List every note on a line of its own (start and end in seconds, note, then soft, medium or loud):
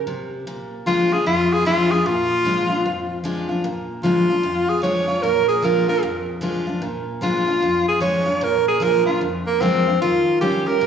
0.07 0.46 C3 medium
0.47 1.24 A#2 medium
0.86 1.11 F3 medium
0.86 1.11 G#3 medium
0.86 1.12 D4 loud
0.86 1.14 F4 loud
0.86 1.10 F4 loud
1.12 1.27 D4 medium
1.12 1.26 F4 medium
1.12 1.26 G#4 loud
1.26 2.03 F2 medium
1.26 1.54 F4 loud
1.53 1.66 G#4 loud
1.65 1.90 F3 loud
1.65 1.90 G#3 loud
1.65 1.91 D4 loud
1.65 1.93 F4 loud
1.65 1.89 F4 medium
1.90 2.06 D4 medium
1.90 2.05 F4 medium
1.90 2.08 G#4 loud
2.06 2.82 A#2 medium
2.06 3.21 F4 loud
2.44 2.69 F3 medium
2.44 2.69 G#3 loud
2.44 2.70 D4 loud
2.44 2.68 F4 loud
2.70 2.85 D4 medium
2.70 2.84 F4 medium
2.85 3.62 F2 loud
3.24 3.48 F3 medium
3.24 3.49 G#3 loud
3.24 3.49 D4 loud
3.24 3.48 F4 loud
3.49 3.65 D4 soft
3.49 3.63 F4 medium
3.64 4.41 A#2 medium
4.03 4.28 F3 medium
4.03 4.28 G#3 medium
4.03 4.29 D4 medium
4.03 4.71 F4 medium
4.03 4.28 F4 loud
4.30 4.44 D4 soft
4.30 4.43 F4 medium
4.43 5.20 F2 medium
4.69 4.82 G#4 loud
4.82 5.07 F3 medium
4.82 5.07 G#3 medium
4.82 5.08 D4 loud
4.82 5.06 F4 loud
4.82 5.24 C#5 loud
5.07 5.23 D4 soft
5.07 5.22 F4 medium
5.22 6.00 A#2 medium
5.22 5.47 A#4 loud
5.48 5.66 G#4 medium
5.62 5.87 F3 medium
5.62 5.87 G#3 medium
5.62 5.88 D4 medium
5.62 5.87 F4 loud
5.62 5.88 A#4 medium
5.88 6.03 D4 medium
5.88 6.02 F4 medium
5.88 6.03 A#4 medium
6.03 6.79 F2 medium
6.41 6.66 F3 medium
6.41 6.66 G#3 medium
6.41 6.67 D4 medium
6.41 6.66 F4 loud
6.67 6.82 D4 medium
6.67 6.81 F4 medium
6.82 7.59 A#2 medium
7.21 7.46 F3 medium
7.21 7.46 G#3 loud
7.21 7.47 D4 medium
7.21 7.46 F4 loud
7.21 7.86 F4 loud
7.47 7.62 D4 soft
7.47 7.61 F4 medium
7.62 8.39 F2 medium
7.88 8.01 G#4 loud
8.00 8.25 F3 medium
8.00 8.26 G#3 loud
8.00 8.26 D4 medium
8.00 8.25 F4 medium
8.00 8.45 C#5 loud
8.26 8.41 D4 soft
8.26 8.40 F4 medium
8.41 9.18 A#2 medium
8.41 8.67 A#4 medium
8.68 8.85 G#4 loud
8.80 9.05 F3 loud
8.80 9.05 G#3 medium
8.80 9.06 D4 loud
8.80 9.05 F4 medium
8.80 9.05 A#4 medium
9.06 9.22 D4 medium
9.06 9.21 F4 medium
9.21 9.98 F2 medium
9.47 9.62 A#3 loud
9.61 9.85 F3 medium
9.61 9.86 G#3 medium
9.61 10.00 C4 medium
9.61 9.86 D4 medium
9.61 9.86 F4 loud
9.87 10.02 D4 soft
9.87 10.01 F4 medium
10.02 10.40 D#3 medium
10.02 10.40 F4 loud
10.41 10.65 D#3 medium
10.41 10.66 G3 loud
10.41 10.66 C#4 loud
10.41 10.69 G4 medium
10.41 10.65 G4 loud
10.66 10.81 C#4 medium
10.66 10.80 G4 medium
10.66 10.87 A#4 loud
10.81 10.87 A#2 loud